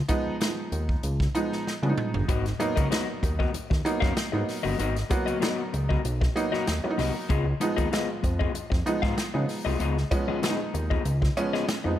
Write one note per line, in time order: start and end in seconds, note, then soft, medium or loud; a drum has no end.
0.08 0.34 F3 loud
0.08 0.34 G#3 loud
0.08 0.34 B3 loud
0.08 0.34 D#4 loud
0.08 kick loud
0.08 closed hi-hat medium
0.26 0.32 D#2 soft
0.40 0.47 D#3 medium
0.40 1.02 G#3 medium
0.40 1.02 B3 medium
0.40 1.02 D#4 medium
0.40 snare loud
0.40 closed hi-hat medium
0.47 1.06 F3 medium
0.72 0.96 D#2 loud
0.72 closed hi-hat medium
0.89 kick medium
1.03 1.28 C#2 loud
1.03 closed hi-hat medium
1.20 1.27 B3 soft
1.20 1.27 D#4 soft
1.20 kick loud
1.20 snare soft
1.35 1.72 F3 loud
1.35 1.72 G#3 loud
1.35 1.72 B3 loud
1.35 1.72 D#4 loud
1.35 closed hi-hat medium
1.52 snare soft
1.67 snare medium
1.82 1.94 C#3 medium
1.82 2.29 F3 medium
1.82 2.28 G#3 medium
1.82 2.29 B3 medium
1.82 1.89 D4 medium
1.82 high tom medium
1.89 2.32 D#4 loud
1.98 mid tom medium
2.14 2.25 G1 loud
2.14 floor tom medium
2.28 2.53 G#1 loud
2.28 2.44 B3 medium
2.28 2.44 F#4 loud
2.28 2.45 A#4 medium
2.28 2.45 D#5 loud
2.28 kick loud
2.28 closed hi-hat loud
2.46 snare soft
2.46 closed hi-hat medium
2.59 2.85 F#3 loud
2.59 2.85 A#3 loud
2.59 2.85 B3 loud
2.59 2.85 D#4 loud
2.59 muted clean electric guitar stroke soft
2.59 closed hi-hat medium
2.76 2.88 C#2 medium
2.76 2.88 B3 medium
2.76 2.88 F#4 medium
2.76 2.87 A#4 medium
2.76 2.87 D#5 medium
2.76 kick medium
2.76 closed hi-hat medium
2.90 3.53 F#3 medium
2.90 3.53 A#3 medium
2.90 3.06 B3 medium
2.90 3.53 B3 medium
2.90 3.53 D#4 medium
2.90 3.07 F#4 loud
2.90 3.07 A#4 loud
2.90 3.07 D#5 loud
2.90 snare loud
2.90 closed hi-hat medium
3.23 3.47 D#2 medium
3.23 muted clean electric guitar stroke soft
3.23 kick medium
3.23 closed hi-hat medium
3.39 3.51 B3 medium
3.39 3.51 F#4 medium
3.39 3.50 A#4 medium
3.39 3.50 D#5 medium
3.39 kick medium
3.54 3.61 D#2 medium
3.54 muted clean electric guitar stroke soft
3.54 closed hi-hat medium
3.70 3.82 D#2 medium
3.70 3.78 B3 soft
3.70 3.78 D#4 soft
3.70 muted clean electric guitar stroke soft
3.70 kick loud
3.70 snare soft
3.85 4.22 F#3 loud
3.85 4.22 A#3 loud
3.85 4.22 B3 loud
3.85 4.23 D#4 loud
3.85 closed hi-hat medium
4.00 4.13 F#2 medium
4.00 4.14 B3 medium
4.00 4.15 F#4 medium
4.00 4.15 A#4 medium
4.00 4.15 F5 medium
4.00 kick loud
4.00 snare soft
4.15 muted clean electric guitar stroke soft
4.15 snare loud
4.15 closed hi-hat medium
4.32 4.45 G#2 medium
4.32 4.95 F#3 medium
4.32 4.95 A#3 medium
4.32 4.95 B3 medium
4.32 4.95 D#4 loud
4.32 muted clean electric guitar stroke medium
4.49 snare soft
4.49 open hi-hat medium
4.63 4.76 G1 medium
4.63 4.77 B3 medium
4.63 4.78 F#4 medium
4.63 4.78 A#4 medium
4.63 4.78 D#5 medium
4.79 5.04 G#1 loud
4.79 4.95 B3 medium
4.79 4.95 F#4 medium
4.79 4.95 A#4 loud
4.79 4.95 D#5 loud
4.79 closed hi-hat medium
4.96 snare soft
4.96 closed hi-hat soft
5.10 5.36 F#3 loud
5.10 5.36 A#3 loud
5.10 5.36 B3 loud
5.10 5.36 F#4 loud
5.10 muted clean electric guitar stroke soft
5.10 kick loud
5.10 closed hi-hat medium
5.26 5.34 C#2 soft
5.26 5.38 B3 medium
5.26 5.38 F#4 medium
5.26 5.38 A#4 medium
5.26 5.37 D#5 medium
5.26 closed hi-hat medium
5.40 6.04 F#3 medium
5.40 6.04 A#3 medium
5.40 5.62 B3 medium
5.40 6.04 B3 medium
5.40 6.04 D#4 medium
5.40 5.62 F#4 medium
5.40 5.62 A#4 loud
5.40 5.63 D#5 medium
5.40 snare loud
5.40 closed hi-hat medium
5.73 5.98 C#2 medium
5.73 muted clean electric guitar stroke soft
5.73 closed hi-hat medium
5.89 6.01 B3 soft
5.89 6.01 F#4 medium
5.89 6.01 A#4 medium
5.89 6.00 D#5 medium
5.89 kick medium
6.04 6.29 B1 medium
6.04 muted clean electric guitar stroke soft
6.04 closed hi-hat medium
6.21 6.28 B3 soft
6.21 6.28 F#4 soft
6.21 muted clean electric guitar stroke medium
6.21 kick medium
6.21 snare soft
6.36 6.73 F#3 loud
6.36 6.73 A#3 loud
6.36 6.73 B3 loud
6.36 6.73 D#4 loud
6.36 closed hi-hat medium
6.52 6.67 B3 medium
6.52 6.67 F#4 medium
6.52 6.66 A#4 medium
6.52 6.66 D#5 medium
6.52 snare soft
6.67 6.81 D#2 medium
6.67 muted clean electric guitar stroke soft
6.67 snare medium
6.67 closed hi-hat medium
6.84 7.30 F#3 loud
6.84 7.30 A#3 medium
6.84 7.30 B3 medium
6.84 6.90 C#4 medium
6.84 muted clean electric guitar stroke medium
6.91 7.33 D#4 loud
6.98 7.12 C2 medium
6.98 7.14 B3 medium
6.98 7.14 F#4 medium
6.98 7.15 A#4 medium
6.98 7.14 D#5 loud
6.98 snare soft
6.98 open hi-hat medium
7.15 muted clean electric guitar stroke soft
7.29 7.54 C#2 loud
7.29 7.45 B3 loud
7.29 7.45 F4 loud
7.29 7.46 G#4 loud
7.29 7.46 D#5 loud
7.29 kick loud
7.29 closed hi-hat medium
7.60 7.86 F3 loud
7.60 7.86 G#3 loud
7.60 7.86 B3 loud
7.60 7.86 D#4 loud
7.60 muted clean electric guitar stroke medium
7.60 closed hi-hat medium
7.76 7.89 D#2 medium
7.76 7.89 B3 medium
7.76 7.88 F4 medium
7.76 7.88 G#4 medium
7.76 7.88 D#5 medium
7.76 kick medium
7.76 closed hi-hat medium
7.91 8.54 F3 medium
7.91 8.54 G#3 medium
7.91 8.08 B3 medium
7.91 8.54 B3 medium
7.91 8.08 F4 medium
7.91 8.54 F4 medium
7.91 8.08 G#4 medium
7.91 8.09 D#5 medium
7.91 snare loud
7.91 closed hi-hat medium
8.23 8.48 F2 medium
8.23 muted clean electric guitar stroke soft
8.23 kick medium
8.23 closed hi-hat medium
8.39 8.52 B3 medium
8.39 8.51 F4 medium
8.39 8.51 G#4 medium
8.39 8.51 D#5 medium
8.39 kick medium
8.54 8.62 F2 soft
8.54 muted clean electric guitar stroke soft
8.54 closed hi-hat medium
8.70 8.83 F2 medium
8.70 8.78 B3 soft
8.70 8.79 D#4 soft
8.70 muted clean electric guitar stroke medium
8.70 kick loud
8.70 snare soft
8.86 9.23 F3 loud
8.86 9.24 G#3 loud
8.86 9.24 B3 loud
8.86 9.24 D#4 loud
8.86 closed hi-hat medium
9.02 9.14 G#2 medium
9.02 9.16 B3 medium
9.02 9.17 F4 medium
9.02 9.17 G#4 medium
9.02 9.16 F5 medium
9.02 kick loud
9.02 snare soft
9.17 muted clean electric guitar stroke soft
9.17 snare medium
9.17 closed hi-hat medium
9.34 9.46 C#3 loud
9.34 9.96 F3 loud
9.34 9.96 G#3 medium
9.34 9.96 B3 medium
9.34 9.96 D#4 loud
9.34 muted clean electric guitar stroke medium
9.49 snare soft
9.49 open hi-hat medium
9.65 9.77 C2 medium
9.65 9.78 B3 medium
9.65 9.79 F4 medium
9.65 9.80 G#4 medium
9.65 9.79 D#5 medium
9.80 10.05 C#2 loud
9.80 9.96 B3 loud
9.80 9.96 F4 medium
9.80 9.96 G#4 medium
9.80 9.96 D#5 loud
9.80 closed hi-hat medium
9.98 snare soft
10.11 10.36 F3 loud
10.11 10.36 G#3 loud
10.11 10.36 B3 loud
10.11 10.36 C#4 loud
10.11 muted clean electric guitar stroke soft
10.11 kick loud
10.11 closed hi-hat medium
10.28 10.34 D#2 soft
10.28 10.40 B3 medium
10.28 10.40 F4 medium
10.28 10.39 G#4 medium
10.28 10.39 D#5 medium
10.42 11.05 F3 medium
10.42 11.05 G#3 medium
10.42 10.58 B3 medium
10.42 11.05 B3 medium
10.42 10.50 C#4 medium
10.42 10.59 F4 medium
10.42 10.59 G#4 medium
10.42 10.59 D#5 medium
10.42 snare loud
10.42 closed hi-hat medium
10.49 11.08 D#4 loud
10.74 10.99 D#2 medium
10.74 muted clean electric guitar stroke soft
10.74 closed hi-hat medium
10.90 11.02 B3 medium
10.90 11.02 F4 medium
10.90 11.02 G#4 medium
10.90 11.02 D#5 medium
10.90 kick medium
11.05 11.30 C#2 loud
11.05 muted clean electric guitar stroke soft
11.05 closed hi-hat medium
11.22 11.29 B3 soft
11.22 11.29 D#4 soft
11.22 muted clean electric guitar stroke soft
11.22 kick medium
11.22 snare soft
11.37 11.74 F3 loud
11.37 11.74 G#3 loud
11.37 11.74 B3 loud
11.37 11.74 C#4 loud
11.37 closed hi-hat medium
11.53 11.67 B3 medium
11.53 11.67 F4 medium
11.53 11.67 G#4 medium
11.53 11.67 D#5 medium
11.53 snare soft
11.68 muted clean electric guitar stroke medium
11.68 snare loud
11.68 closed hi-hat medium
11.84 11.97 F2 medium
11.84 11.99 F3 medium
11.84 11.99 G#3 medium
11.84 11.99 B3 medium
11.84 11.99 D#4 medium
11.84 muted clean electric guitar stroke medium